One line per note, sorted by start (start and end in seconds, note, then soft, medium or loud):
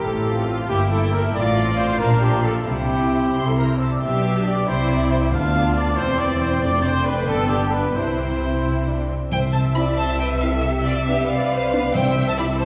0.00 0.66 G4 medium
0.00 0.36 A4 medium
0.05 0.62 A1 medium
0.05 0.62 A2 medium
0.27 0.69 C4 soft
0.27 0.69 F4 soft
0.27 0.69 F5 soft
0.38 0.42 A4 medium
0.48 0.69 F4 medium
0.69 1.26 G1 medium
0.69 1.27 G2 medium
0.69 0.90 A#3 soft
0.69 1.33 E4 medium
0.69 0.90 E4 soft
0.69 0.79 G4 medium
0.69 0.91 G5 soft
0.91 1.33 A#3 medium
0.91 1.33 E4 soft
0.91 1.12 A4 medium
0.91 1.34 G5 medium
1.12 1.22 A#4 medium
1.34 1.92 A1 medium
1.34 1.92 A2 medium
1.34 2.00 F4 medium
1.34 1.77 D5 loud
1.56 1.98 C4 medium
1.56 1.99 F4 medium
1.56 1.98 F5 medium
1.77 1.99 C5 medium
1.99 2.58 A#1 medium
1.99 2.58 A#2 medium
1.99 2.66 D4 medium
1.99 2.20 D4 medium
1.99 2.21 F4 medium
1.99 2.21 A#4 loud
1.99 2.21 F5 medium
2.21 2.65 D4 medium
2.21 2.66 F4 medium
2.21 2.43 G4 medium
2.21 2.66 F5 medium
2.43 2.53 A4 medium
2.65 3.26 C2 medium
2.65 3.26 C3 medium
2.65 3.66 E4 medium
2.65 3.44 G4 medium
2.89 3.56 C4 soft
2.89 3.56 E4 soft
2.89 3.29 G5 soft
3.34 3.94 C2 medium
3.34 3.94 C3 medium
3.34 3.55 C6 medium
3.47 3.57 A4 medium
3.56 4.02 C4 soft
3.56 4.01 E4 soft
3.56 3.62 A#4 medium
3.56 3.79 A#5 medium
3.68 3.79 C5 medium
3.78 3.90 E5 medium
3.78 4.02 A5 soft
3.91 4.02 D5 medium
4.01 4.65 B1 medium
4.01 4.65 B2 medium
4.01 4.64 D4 medium
4.01 4.64 G4 medium
4.01 4.64 G4 soft
4.01 4.46 E5 medium
4.01 4.65 G5 soft
4.45 4.68 D5 medium
4.68 5.34 C2 medium
4.68 5.34 C3 medium
4.68 5.33 C4 medium
4.68 5.33 E4 medium
4.68 5.34 E4 medium
4.68 4.90 C5 medium
4.68 5.33 G5 soft
4.89 5.11 D5 medium
5.11 5.21 C5 medium
5.32 5.98 D2 medium
5.32 5.98 B3 medium
5.32 5.97 D4 medium
5.32 5.97 F4 medium
5.32 5.75 F5 medium
5.32 5.98 F5 medium
5.75 5.97 D5 medium
5.97 6.62 E1 medium
5.97 6.62 E2 medium
5.97 6.62 C4 medium
5.97 7.28 C4 medium
5.97 6.62 E4 medium
5.97 6.19 C5 loud
5.97 7.91 G5 medium
6.19 6.41 D5 medium
6.40 6.61 C5 medium
6.62 7.26 F1 medium
6.62 7.27 F2 medium
6.62 7.27 A3 medium
6.62 7.26 D4 medium
6.62 6.83 D5 medium
6.84 7.06 C5 medium
7.05 7.28 B4 medium
7.27 7.95 G1 medium
7.27 7.95 G2 medium
7.27 7.95 B3 medium
7.27 7.93 D4 medium
7.27 7.50 A4 medium
7.49 7.72 G4 medium
7.72 7.95 B4 medium
7.95 9.09 C2 soft
7.95 9.09 C3 soft
7.95 8.57 C4 medium
7.95 8.57 E4 medium
7.95 8.95 E4 medium
7.95 9.09 C5 medium
7.95 9.08 G5 soft
8.62 8.84 E4 medium
8.86 9.09 D4 medium
9.09 9.32 C4 soft
9.30 11.91 C2 medium
9.30 9.94 C3 medium
9.30 11.91 C3 medium
9.30 9.52 C5 medium
9.30 11.26 E5 medium
9.30 9.38 G5 medium
9.52 9.62 C5 medium
9.52 9.60 A5 medium
9.75 9.83 C4 medium
9.75 9.83 E4 medium
9.75 9.98 D5 medium
9.75 9.83 B5 medium
9.98 10.20 C5 medium
9.98 10.19 A5 medium
10.19 10.42 B4 medium
10.19 10.27 G5 medium
10.41 10.50 C4 medium
10.41 10.50 E4 medium
10.41 10.49 F5 medium
10.45 10.65 A4 medium
10.62 10.87 G4 medium
10.62 10.70 E5 medium
10.84 10.94 F4 medium
10.84 11.06 D5 medium
11.06 11.16 B3 medium
11.06 11.16 D4 medium
11.06 11.29 G4 medium
11.06 11.28 E5 medium
11.27 11.94 B4 medium
11.27 11.51 D5 medium
11.27 11.92 F5 medium
11.52 11.73 C5 medium
11.73 11.81 B3 medium
11.73 11.81 D4 medium
11.73 11.95 D5 medium
11.92 12.65 C2 medium
11.92 12.65 C3 medium
11.92 12.56 C3 medium
11.92 12.27 C5 medium
11.92 12.60 E5 medium
11.92 12.26 G5 medium
12.28 12.32 C5 medium
12.28 12.33 A5 medium
12.37 12.47 C4 medium
12.37 12.47 E4 medium
12.37 12.45 D5 medium
12.37 12.46 B5 medium
12.60 12.65 C5 medium
12.60 12.65 A5 medium